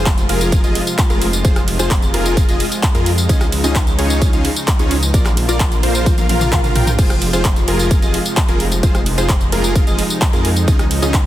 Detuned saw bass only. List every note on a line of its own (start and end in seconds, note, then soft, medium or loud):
0.00 0.27 F1 medium
0.29 0.62 F1 loud
0.64 0.78 F1 medium
1.10 1.42 F1 loud
1.45 1.77 F1 loud
1.79 2.12 F1 medium
2.14 2.46 F1 medium
2.49 2.62 F1 loud
2.95 3.27 F2 loud
3.29 3.62 C#2 loud
3.64 3.96 C#2 medium
3.99 4.31 C#2 loud
4.33 4.47 C#2 medium
4.79 5.12 C#2 loud
5.14 5.46 A#1 loud
5.49 5.81 A#1 medium
5.83 6.15 A#1 loud
6.18 6.27 A#1 loud
6.29 6.62 A#1 loud
6.64 6.73 A#1 loud
6.75 6.96 A#1 loud
6.99 7.31 F1 loud
7.33 7.65 F1 loud
7.68 8.00 F1 loud
8.02 8.16 F1 loud
8.49 8.81 F1 loud
8.83 9.15 F1 loud
9.18 9.50 F1 medium
9.52 9.85 F1 loud
9.87 10.01 F1 medium
10.33 10.65 F2 loud
10.68 11.00 C#2 loud
11.02 11.26 C#2 medium